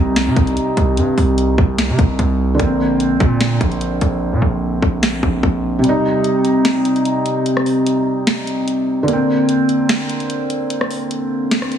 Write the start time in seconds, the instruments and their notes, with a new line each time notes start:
Already playing: 808-style bass C2, felt piano C3 G3 D#4
0.16 snare, closed hi-hat
0.27 808-style bass C3
0.36 808-style bass C2, kick, closed hi-hat
0.47 closed hi-hat
0.57 closed hi-hat
0.77 808-style bass C2, closed hi-hat
0.97 808-style bass G2, closed hi-hat
1.18 808-style bass C2, open hi-hat
1.38 closed hi-hat
1.58 808-style bass C2, kick
1.78 snare, closed hi-hat
1.89 808-style bass C3
1.99 808-style bass C2, kick, closed hi-hat
2.19 808-style bass C2, closed hi-hat
2.54 felt piano D3
2.59 808-style bass A#1, felt piano A#3, kick, closed hi-hat
2.65 felt piano C4
3.00 closed hi-hat
3.20 808-style bass A#2, kick, closed hi-hat
3.41 snare, closed hi-hat
3.61 808-style bass A#1, kick, closed hi-hat
3.72 closed hi-hat
3.81 closed hi-hat
4.01 808-style bass A#1, closed hi-hat
4.32 808-style bass A#2
4.42 808-style bass A#1
4.82 808-style bass A#1, kick
5.03 snare
5.23 808-style bass A#1, kick
5.43 808-style bass A#1, kick
5.79 felt piano C3
5.84 felt piano G3, closed hi-hat
5.89 felt piano D#4
6.24 closed hi-hat
6.45 closed hi-hat
6.65 snare, closed hi-hat
6.85 closed hi-hat
6.96 closed hi-hat
7.05 closed hi-hat
7.26 closed hi-hat
7.46 closed hi-hat
7.57 cross-stick
7.66 open hi-hat
7.87 closed hi-hat
8.27 snare, closed hi-hat
8.47 closed hi-hat
8.68 closed hi-hat
9.03 felt piano D3
9.08 felt piano A#3, closed hi-hat
9.13 felt piano C4
9.49 closed hi-hat
9.69 closed hi-hat
9.89 snare, closed hi-hat
10.09 closed hi-hat
10.20 closed hi-hat
10.30 closed hi-hat
10.50 closed hi-hat
10.70 closed hi-hat
10.81 cross-stick
10.91 open hi-hat
11.11 closed hi-hat
11.51 snare, closed hi-hat
11.62 cross-stick
11.72 closed hi-hat